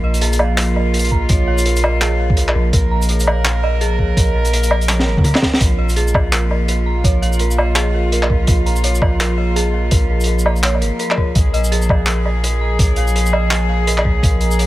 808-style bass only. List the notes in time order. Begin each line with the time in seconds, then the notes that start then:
Already playing: A#1
1.29 A#1
2.55 A#1
2.73 A#1
4.17 A#1
5.07 G#1
5.61 A#1
7.04 A#1
8.30 A#1
8.48 A#1
9.92 A#1
10.82 G#1
11.35 A#1
12.79 A#1
14.05 A#1
14.23 A#1